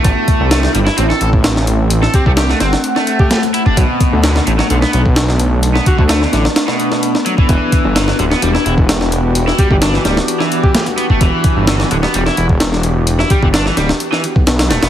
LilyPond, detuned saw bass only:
\new Staff \with { instrumentName = "Detuned saw bass" } { \clef bass \time 4/4 \key e \minor \tempo 4 = 129 a,,16 r8 c,8 r16 g,,16 r16 a,,16 r16 a,,4.~ | a,,16 r8 c,8 r16 g,,16 r2 r16 | b,,16 r8 d,8 r16 a,,16 r16 b,,16 r16 b,,4.~ | b,,16 r8 d,8 r16 a,,16 r2 r16 |
e,,16 r8 g,,8 r16 d,,16 r16 e,,16 r16 e,,4.~ | e,,16 r8 g,,8 r16 d,,16 r2 r16 | e,,16 r8 g,,8 r16 d,,16 r16 e,,16 r16 e,,4.~ | e,,16 r8 g,,8 r16 d,,16 r4 b,,16 b,,8 d,,16 e,,16 | }